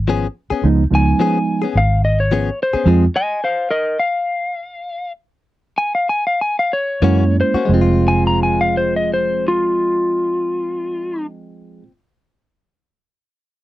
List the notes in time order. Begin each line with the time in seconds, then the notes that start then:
Already playing: G#1
0.08 F3 B3 C#4 G#4
0.50 B3 C#4 G#4, muted fingered electric bass stroke
0.63 C#2 F3 G#3 B3 D#4
0.90 C#2 F3 G#3 B3 D#4
0.95 G#5
1.20 F3 B3 C#4 G#4
1.62 B3 C#4 G#4
1.75 G#1 F5
2.05 D#5
2.20 C#5
2.32 F3 B3 C#4 G#4
2.63 C5
2.73 B3 C#4 G#4, muted fingered electric bass stroke
2.85 F2 F3 G#3 C4 F4 G#4
3.16 D#5 G#5
3.44 C5 F5
3.71 A#4 D#5
3.99 F5
5.78 G#5
5.95 F5
6.09 G#5
6.27 F5
6.41 G#5
6.59 F5
6.73 C#5
7.02 F#2 E3 G#3 A#3 C#4 E4 F#4
7.41 C5
7.54 A#3 C#4 F#4, muted fingered electric bass stroke
7.65 F1 F3 G#3
7.70 G#3 C4
7.75 F4
7.81 F4
8.08 G#5
8.27 A#5
8.43 G#5
8.61 F5
8.77 C5
8.96 D#5
9.14 C5
9.48 F4